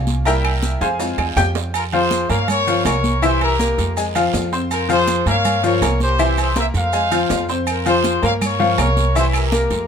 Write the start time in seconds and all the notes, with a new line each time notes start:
Already playing: C2 A#3 C#4 F4
0.07 high conga, short guiro, maracas
0.25 G3 A#3 E4 A#4 E5 G5 A#5, high conga, low agogo, long guiro, maracas
0.44 high conga, low agogo, claves
0.63 high conga, low timbale, short guiro, maracas
0.81 F2 G#4 C5 F5 G#5, high conga, low agogo, short guiro, maracas
0.99 G#3 C4 F4, high conga, high timbale, low agogo, long guiro, maracas
1.18 E2, high conga, low timbale, low agogo, claves
1.36 F2 G4 G5, high conga, low timbale, short guiro, maracas
1.55 high conga, low timbale, short guiro, maracas
1.74 F4 A#4, high conga, low agogo, long guiro, maracas
1.92 F3 F4 G#4 C5 F5, high conga, low agogo
2.11 high conga, low timbale, short guiro, maracas
2.30 G2 A#3 A#4 C#5 F5 A#5, high conga, low agogo, short guiro, maracas
2.48 A#4 C#5, high conga, low conga, low agogo, long guiro, maracas
2.67 F3 F4 F5, high conga, maracas
2.85 C2 A#3 A#4 C#5 A#5, high conga, low timbale, low agogo, short guiro, maracas
3.04 high conga, short guiro, maracas
3.22 E3 E4 G4 C5 E5, high conga, low agogo, long guiro, maracas
3.41 G4 A#4, high conga, low agogo
3.59 A#3 A#4 A#5, high conga, low timbale, short guiro, maracas
3.78 F2, high conga, low agogo, short guiro, maracas
3.97 G#3 G#4 G#5, high conga, low agogo, long guiro, maracas
4.15 F3 F4 F5, high conga, low agogo, maracas
4.33 F2, high conga, low timbale, short guiro, maracas
4.52 C4 C5 C6, high conga, short guiro, maracas
4.71 F4 A#4, high conga, low agogo, long guiro, maracas
4.89 F3 F4 G#4 C5 F5, high conga, low agogo, maracas
5.08 high conga, low timbale, short guiro, maracas
5.26 G2 A#3 A#4 C#5 F5 A#5, high conga, low agogo, short guiro, maracas
5.45 high conga, low conga, low agogo, long guiro, maracas
5.63 F3 F4 A#4 C#5 F5, high conga, maracas
5.81 C2 A#3 A#4 A#5, high conga, low timbale, low agogo, short guiro, maracas
6.00 G4 C5, high conga, short guiro, maracas
6.19 E3 E4 E5, high conga, low agogo, long guiro, maracas
6.37 G#4 C5, high conga, low agogo, maracas
6.56 A#3 A#4 C5 E5 A#5, high conga, low timbale, short guiro, maracas
6.74 F2 C5 F5, high conga, low agogo, short guiro, maracas
6.93 G#3 G#4 G#5, high conga, low agogo, long guiro, maracas
7.11 F3 F4 F5, high conga, low agogo, maracas
7.30 F2, high conga, low timbale, short guiro, maracas
7.49 C4 C5 C6, high conga, short guiro, maracas
7.67 F4 A#4, high conga, low agogo, long guiro, claves, maracas
7.86 F3 F4 G#4 C5 F5, high conga, low agogo, maracas
8.04 high conga, low timbale, short guiro, maracas
8.22 G2 A#3 A#4 C#5 F5 A#5, high conga, low agogo, short guiro, maracas
8.42 A#4 C#5, high conga, low conga, low agogo, long guiro, claves, maracas
8.59 F3 F4 F5, high conga, low conga
8.78 C2 A#3 A#4 C#5 A#5, high conga, low timbale, low agogo, short guiro, claves, maracas
8.97 high conga, short guiro, maracas
9.15 E3 E4 G4 C5 E5, high conga, low agogo, long guiro, maracas
9.33 G4 A#4, high conga, low agogo, claves, maracas
9.52 A#3 A#4 A#5, high conga, low timbale, short guiro, maracas
9.70 F2, high conga, low agogo, short guiro, maracas